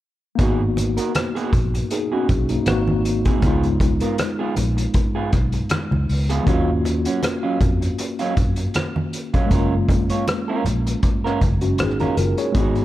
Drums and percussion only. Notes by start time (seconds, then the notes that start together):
0.39 kick, closed hi-hat, muted conga
0.77 closed hi-hat, muted conga
0.97 closed hi-hat
1.15 cross-stick, closed hi-hat, high conga
1.36 closed hi-hat
1.53 kick, closed hi-hat, low conga
1.74 closed hi-hat
1.90 closed hi-hat
2.29 kick, closed hi-hat, muted conga, low conga
2.49 closed hi-hat
2.66 cross-stick, closed hi-hat, high conga
2.88 high conga
3.05 closed hi-hat
3.25 kick, closed hi-hat
3.42 kick, closed hi-hat, muted conga
3.63 closed hi-hat
3.80 kick, closed hi-hat, muted conga
4.00 closed hi-hat
4.18 cross-stick, closed hi-hat, high conga
4.56 closed hi-hat, low conga
4.78 closed hi-hat
4.94 kick, closed hi-hat
5.33 kick, cross-stick, closed hi-hat, muted conga, low conga
5.52 closed hi-hat
5.69 cross-stick, closed hi-hat, high conga
5.92 high conga
6.09 open hi-hat
6.30 closed hi-hat
6.47 kick, closed hi-hat, muted conga
6.85 closed hi-hat, muted conga
7.05 closed hi-hat
7.23 cross-stick, closed hi-hat, high conga
7.61 kick, closed hi-hat, muted conga, low conga
7.82 closed hi-hat
7.98 closed hi-hat
8.19 closed hi-hat
8.37 kick, closed hi-hat, muted conga, low conga
8.56 closed hi-hat
8.74 cross-stick, closed hi-hat, high conga
8.96 high conga
9.13 closed hi-hat
9.34 kick, closed hi-hat
9.51 kick, closed hi-hat, muted conga
9.89 kick, closed hi-hat, muted conga
10.09 closed hi-hat
10.27 cross-stick, closed hi-hat, high conga
10.66 closed hi-hat, low conga
10.87 closed hi-hat
11.03 kick, closed hi-hat
11.26 cross-stick
11.41 kick, closed hi-hat, muted conga, low conga
11.61 closed hi-hat
11.78 cross-stick, closed hi-hat, high conga
12.00 closed hi-hat, high conga
12.17 closed hi-hat
12.38 closed hi-hat
12.55 kick, closed hi-hat, muted conga
12.75 closed hi-hat